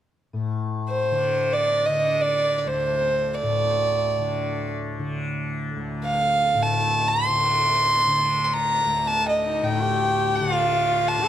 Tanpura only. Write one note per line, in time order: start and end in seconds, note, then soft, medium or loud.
0.33 3.42 A2 soft
1.11 1.89 D3 medium
1.89 4.19 D3 soft
2.66 5.76 D2 medium
3.43 6.54 A2 soft
4.19 4.99 D3 soft
4.99 7.29 D3 soft
5.76 8.85 D2 medium
6.54 9.62 A2 medium
7.29 8.07 D3 medium
8.07 10.41 D3 soft
8.86 11.28 D2 medium
9.62 11.28 A2 medium
10.41 11.18 D3 medium
11.18 11.28 D3 medium